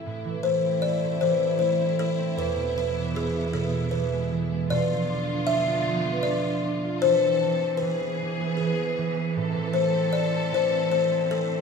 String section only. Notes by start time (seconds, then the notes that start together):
0.06 C3 A3 E4
2.38 B2 B3
4.69 D3 B3 F4
7.01 E3 C4 A4
7.79 B3 G#4
9.35 C4 A4